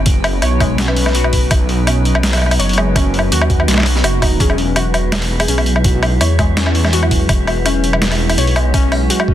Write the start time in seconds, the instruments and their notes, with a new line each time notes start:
Already playing: detuned saw bass F#1, ambient pad F#3 D#4 B4, synth drone B3
0.06 kick, closed hi-hat
0.24 open hi-hat, low woodblock
0.42 detuned saw bass B1, synth pluck C#5, closed hi-hat, low woodblock
0.60 synth pluck G#3, kick, closed hi-hat, low woodblock
0.78 synth pluck C#4, soft synth lead F#4, snare, closed hi-hat
0.88 soft synth lead B4, low woodblock
0.96 open hi-hat
1.06 snare, low woodblock
1.15 synth pluck F#4, closed hi-hat
1.24 low woodblock
1.33 kick, open hi-hat
1.51 detuned saw bass B1, kick, closed hi-hat, low woodblock
1.69 open hi-hat
1.87 synth pluck C#4, closed hi-hat, low woodblock
2.05 closed hi-hat
2.15 low woodblock
2.23 snare, closed hi-hat
2.33 open hi-hat, low woodblock
2.37 low woodblock
2.42 low woodblock
2.46 low woodblock
2.51 open hi-hat, low woodblock
2.59 detuned saw bass F#1, synth pluck C#5, closed hi-hat
2.69 open hi-hat
2.73 closed hi-hat
2.78 synth pluck G#3, low woodblock
2.96 synth pluck C#4, kick, closed hi-hat, low woodblock
3.14 open hi-hat
3.19 low woodblock
3.32 detuned saw bass D#2, synth pluck F#4, closed hi-hat
3.42 low woodblock
3.50 kick, closed hi-hat
3.60 low woodblock
3.68 detuned saw bass B1, snare, closed hi-hat
3.71 snare
3.74 snare
3.78 snare, low woodblock
3.80 snare
3.83 snare, open hi-hat
3.96 snare
4.04 detuned saw bass F#1, synth pluck F#4, closed hi-hat, low woodblock
4.22 synth pluck D#4, kick, open hi-hat, low woodblock
4.40 detuned saw bass E1, synth drone G#3, synth pluck C#4, ambient pad E4, soft synth lead G#4, kick, closed hi-hat
4.50 soft synth lead G#4, low woodblock
4.58 open hi-hat
4.76 synth pluck F#4, closed hi-hat, low woodblock
4.94 closed hi-hat, low woodblock
5.12 snare, closed hi-hat, low woodblock
5.22 open hi-hat
5.40 soft synth lead G#4, open hi-hat, low woodblock
5.48 detuned saw bass B1, synth pluck C#4, soft synth lead G#4, closed hi-hat
5.58 open hi-hat, low woodblock
5.66 closed hi-hat
5.76 low woodblock
5.84 soft synth lead F#4, kick, closed hi-hat
5.94 soft synth lead F#4
6.03 open hi-hat, low woodblock
6.21 detuned saw bass E2, synth pluck C#5, closed hi-hat, low woodblock
6.39 synth pluck G#3, kick, closed hi-hat, low woodblock
6.57 synth pluck C#4, snare, closed hi-hat
6.66 low woodblock
6.75 open hi-hat
6.85 snare, low woodblock
6.93 synth pluck F#4, closed hi-hat
7.03 low woodblock
7.11 kick, open hi-hat
7.29 detuned saw bass E1, kick, closed hi-hat, low woodblock
7.47 open hi-hat, low woodblock
7.66 synth pluck C#4, closed hi-hat, low woodblock
7.84 closed hi-hat
7.93 low woodblock
8.02 snare, closed hi-hat
8.12 open hi-hat, low woodblock
8.30 open hi-hat, low woodblock
8.38 detuned saw bass B1, synth pluck C#5, closed hi-hat
8.47 open hi-hat
8.56 synth pluck G#3, closed hi-hat, low woodblock
8.74 synth pluck C#4, kick, closed hi-hat, low woodblock
8.92 open hi-hat, low woodblock
9.10 synth pluck F#4, closed hi-hat
9.20 low woodblock
9.28 detuned saw bass E1, kick